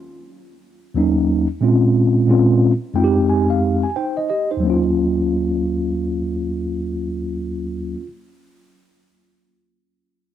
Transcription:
0.95 1.46 D#2 medium
0.95 1.46 F#3 medium
0.95 1.46 A#3 medium
0.95 1.47 C#4 medium
0.95 1.47 D#4 medium
1.61 2.26 A#2 medium
1.61 2.27 G#3 medium
1.61 2.28 C4 medium
1.61 2.29 C#4 medium
1.61 2.29 F4 medium
2.27 2.70 A#2 medium
2.27 2.71 G#3 medium
2.27 2.71 C4 medium
2.27 2.71 C#4 medium
2.27 2.72 F4 medium
2.94 3.84 F2 medium
2.94 3.84 G#3 medium
2.94 3.84 C4 medium
2.94 3.85 D#4 medium
2.94 3.05 F4 medium
2.94 3.27 G5 medium
3.04 3.89 G4 medium
3.29 3.49 G#5 medium
3.50 3.81 F5 medium
3.83 3.95 G#5 medium
3.96 4.28 D#4 soft
3.96 4.28 C5 medium
3.96 4.16 G5 medium
4.17 4.28 D#5 medium
4.30 4.50 G4 soft
4.30 4.50 D#5 medium
4.51 4.83 D#4 soft
4.51 4.82 C5 medium
4.57 7.93 D#2 medium
4.57 7.96 F#3 medium
4.63 8.00 A#3 medium
4.63 8.03 C#4 medium
4.70 8.06 F4 medium

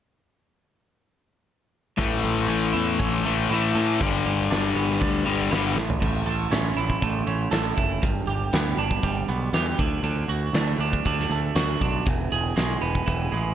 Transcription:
1.97 2.23 A1 medium
1.97 3.22 A2 medium
1.97 3.24 A2 medium
1.97 3.23 E3 medium
1.97 3.24 A3 medium
1.97 kick medium
1.97 open hi-hat medium
2.23 2.47 A1 medium
2.23 3.24 A3 soft
2.23 open hi-hat soft
2.48 2.73 A1 medium
2.48 2.98 C#4 medium
2.48 open hi-hat medium
2.73 2.98 E2 medium
2.73 3.49 E4 medium
2.73 open hi-hat soft
2.99 3.47 A1 medium
2.99 4.00 C#4 medium
2.99 kick medium
2.99 open hi-hat medium
3.24 3.49 E3 medium
3.24 4.00 A3 soft
3.24 3.49 A3 medium
3.24 open hi-hat soft
3.29 3.50 A2 medium
3.50 3.73 A1 medium
3.50 3.99 A2 medium
3.50 4.00 E3 medium
3.50 4.00 E4 medium
3.50 open hi-hat medium
3.54 4.01 A3 medium
3.75 3.99 A2 medium
3.75 4.00 A4 medium
3.75 open hi-hat soft
4.00 4.24 G1 medium
4.00 5.24 G2 medium
4.00 5.25 D3 medium
4.00 4.25 G3 medium
4.00 5.24 G3 medium
4.00 kick medium
4.00 open hi-hat medium
4.26 4.49 G1 medium
4.26 5.24 G3 medium
4.26 open hi-hat soft
4.50 4.74 G1 medium
4.50 4.99 D4 medium
4.50 snare medium
4.50 open hi-hat medium
4.75 4.99 G1 medium
4.75 5.50 B3 medium
4.75 open hi-hat soft
4.90 snare soft
5.00 5.25 D2 medium
5.00 5.76 D4 medium
5.00 kick medium
5.00 open hi-hat medium
5.25 5.50 G1 medium
5.25 5.50 D3 medium
5.25 5.76 G3 medium
5.25 5.49 G3 medium
5.25 open hi-hat soft
5.29 5.50 G2 medium
5.51 5.75 G1 medium
5.51 5.75 G2 medium
5.51 5.76 D3 medium
5.51 5.76 G3 medium
5.51 5.76 B3 medium
5.51 snare medium
5.51 open hi-hat medium
5.76 6.00 A1 medium
5.76 5.99 A2 medium
5.76 snare soft
5.90 floor tom medium
6.01 6.22 A1 medium
6.01 7.27 A2 medium
6.01 kick medium
6.01 crash medium
6.26 6.46 A1 medium
6.26 7.50 A4 medium
6.26 closed hi-hat medium
6.51 6.71 A1 medium
6.51 7.26 C#4 medium
6.51 snare medium
6.51 closed hi-hat medium
6.76 6.96 A1 medium
6.76 7.76 E4 medium
6.76 closed hi-hat medium
6.90 kick medium
7.02 7.22 A1 medium
7.02 8.03 A3 medium
7.02 kick medium
7.02 closed hi-hat medium
7.27 7.47 A1 medium
7.27 8.03 C#4 medium
7.27 closed hi-hat medium
7.51 7.72 A1 medium
7.51 8.02 A4 medium
7.51 snare medium
7.51 closed hi-hat medium
7.77 7.97 F#1 medium
7.77 8.02 E4 medium
7.77 kick medium
7.77 closed hi-hat medium
8.02 8.23 G1 medium
8.02 9.28 G2 medium
8.02 kick medium
8.02 closed hi-hat medium
8.27 8.48 G1 medium
8.27 9.53 G4 medium
8.27 closed hi-hat soft
8.53 8.73 D2 medium
8.53 9.27 B3 medium
8.53 snare loud
8.53 closed hi-hat medium
8.77 8.97 G1 medium
8.77 9.79 D4 medium
8.77 closed hi-hat soft
8.91 kick medium
9.03 9.23 G1 medium
9.03 9.78 G3 medium
9.03 kick medium
9.03 closed hi-hat medium
9.28 9.48 B1 medium
9.28 9.79 B3 medium
9.28 closed hi-hat soft
9.53 9.73 E2 medium
9.53 9.79 G4 medium
9.53 snare loud
9.53 closed hi-hat medium
9.79 9.99 D2 medium
9.79 10.03 D3 medium
9.79 kick medium
9.79 closed hi-hat soft
10.03 10.23 D2 medium
10.03 11.05 D3 medium
10.03 closed hi-hat medium
10.28 10.49 D2 medium
10.28 11.55 F#4 medium
10.28 closed hi-hat medium
10.53 10.74 D2 medium
10.53 11.30 A3 medium
10.53 snare medium
10.53 closed hi-hat medium
10.78 10.99 D2 medium
10.78 11.80 D4 medium
10.78 closed hi-hat medium
10.93 kick medium
11.05 11.25 D2 medium
11.05 12.07 D3 medium
11.05 kick medium
11.05 closed hi-hat medium
11.20 snare soft
11.30 11.50 D2 medium
11.30 12.07 A3 medium
11.30 closed hi-hat medium
11.55 11.75 D2 medium
11.55 12.06 F#4 medium
11.55 snare loud
11.55 closed hi-hat medium
11.81 12.01 B1 medium
11.81 12.07 D4 medium
11.81 kick medium
11.81 closed hi-hat medium
12.06 12.26 E1 medium
12.06 13.32 E2 medium
12.06 kick medium
12.06 closed hi-hat medium
12.32 12.52 E1 medium
12.32 13.54 G#4 medium
12.32 closed hi-hat medium
12.56 12.76 B1 medium
12.56 13.31 G#3 medium
12.56 snare medium
12.56 closed hi-hat medium
12.81 13.01 E1 medium
12.81 13.54 B3 medium
12.81 closed hi-hat medium
12.95 kick medium
13.06 13.28 E1 medium
13.06 13.54 E3 medium
13.06 kick medium
13.06 closed hi-hat medium
13.32 13.52 A1 medium
13.32 13.54 G#3 medium
13.32 closed hi-hat medium

